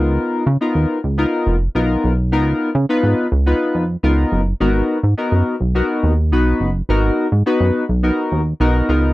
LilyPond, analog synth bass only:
\new Staff \with { instrumentName = "Analog synth bass" } { \clef bass \time 4/4 \key gis \dorian \tempo 4 = 105 cis,8 r16 cis16 r16 dis,16 r16 cis,8 r16 eis,,8 b,,8 b,,8 | cis,8 r16 cis16 r16 gis,16 r16 cis,8 r16 eis,8 cis,8 fis,,8 | gis,,8 r16 gis,16 r16 fis,16 r16 b,,8 r16 dis,8 b,,8 fis,,8 | gis,,8 r16 gis,16 r16 fis,16 r16 b,,8 r16 dis,8 b,,8 cis,8 | }